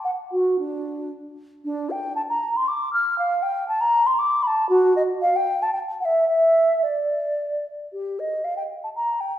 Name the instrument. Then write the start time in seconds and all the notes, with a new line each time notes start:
flute
0.04 F#5
0.32 F#4
0.59 D4
1.65 D4
1.90 G5
2.16 A5
2.29 A#5
2.56 C6
2.68 D6
2.93 F6
3.18 F5
3.42 G5
3.68 A5
3.81 A#5
4.06 C6
4.19 D6
4.43 B5
4.47 A5
4.69 F#4
4.96 D#5
5.22 F5
5.36 G5
5.62 A5
5.73 G5
6.00 F#5
6.05 E5
6.28 E5
6.83 D5
7.93 G4
8.19 D#5
8.44 F5
8.57 G5
8.84 A5
8.96 A#5
9.20 G5